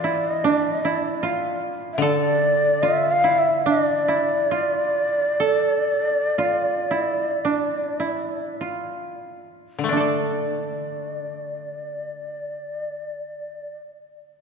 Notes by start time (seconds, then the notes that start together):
Already playing: E3 A4 D5
0.04 E4
0.31 D#5
0.44 D4
0.49 D5
0.70 D#5
0.85 E4 D5
1.23 F4
1.93 E5
1.98 D3
2.02 A4 D5
2.83 F4 E5
3.12 F5
3.24 E4
3.39 E5
3.66 D4 D#5
3.85 D5
4.08 E4
4.51 F4
5.40 A4
6.38 F4
6.91 E4
7.45 D4
8.00 E4
8.61 F4
9.79 D3
9.84 A3
9.89 D4 D5
9.96 A4 D5